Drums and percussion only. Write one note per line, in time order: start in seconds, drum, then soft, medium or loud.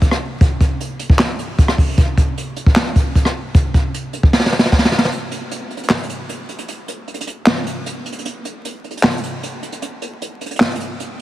0.02 kick loud
0.02 closed hi-hat medium
0.11 cross-stick loud
0.41 kick loud
0.41 closed hi-hat medium
0.61 kick medium
0.61 closed hi-hat medium
0.81 closed hi-hat medium
0.99 closed hi-hat medium
1.10 kick loud
1.19 snare loud
1.19 clap medium
1.19 closed hi-hat medium
1.39 closed hi-hat medium
1.59 kick loud
1.59 closed hi-hat medium
1.68 cross-stick loud
1.78 kick loud
1.78 open hi-hat medium
1.98 kick loud
1.98 closed hi-hat medium
2.17 kick loud
2.17 closed hi-hat medium
2.38 closed hi-hat medium
2.56 closed hi-hat medium
2.66 kick loud
2.76 snare loud
2.76 clap loud
2.76 closed hi-hat medium
2.96 kick loud
2.96 closed hi-hat medium
3.15 kick medium
3.15 closed hi-hat medium
3.25 cross-stick loud
3.55 kick loud
3.55 closed hi-hat medium
3.74 kick loud
3.74 closed hi-hat medium
3.94 closed hi-hat medium
4.13 closed hi-hat medium
4.23 kick loud
4.33 snare medium
4.40 snare medium
4.46 snare medium
4.53 snare medium
4.59 snare medium
4.66 snare medium
4.72 kick medium
4.72 snare medium
4.79 snare medium
4.85 snare loud
4.92 snare medium
4.98 snare loud
5.05 snare loud
5.12 closed hi-hat medium
5.31 closed hi-hat medium
5.51 closed hi-hat medium
5.70 closed hi-hat soft
5.77 closed hi-hat soft
5.83 closed hi-hat medium
5.89 snare loud
5.89 clap medium
5.96 closed hi-hat medium
6.03 closed hi-hat medium
6.09 closed hi-hat medium
6.29 closed hi-hat medium
6.49 closed hi-hat medium
6.59 closed hi-hat medium
6.68 closed hi-hat medium
6.88 closed hi-hat medium
7.08 closed hi-hat soft
7.14 closed hi-hat medium
7.21 closed hi-hat medium
7.27 closed hi-hat medium
7.46 snare loud
7.46 clap medium
7.66 closed hi-hat medium
7.86 closed hi-hat medium
8.06 closed hi-hat medium
8.12 closed hi-hat medium
8.19 closed hi-hat medium
8.25 closed hi-hat medium
8.45 closed hi-hat medium
8.65 closed hi-hat medium
8.84 closed hi-hat soft
8.91 closed hi-hat soft
8.97 closed hi-hat medium
9.03 snare loud
9.03 clap medium
9.10 closed hi-hat medium
9.17 closed hi-hat medium
9.23 closed hi-hat medium
9.43 closed hi-hat medium
9.63 closed hi-hat medium
9.72 closed hi-hat medium
9.82 closed hi-hat medium
10.02 closed hi-hat medium
10.22 closed hi-hat medium
10.41 closed hi-hat medium
10.46 closed hi-hat medium
10.51 closed hi-hat medium
10.56 closed hi-hat medium
10.60 snare loud
10.60 clap medium
10.65 closed hi-hat medium
10.70 closed hi-hat medium
10.75 closed hi-hat medium
10.80 closed hi-hat medium
11.00 closed hi-hat medium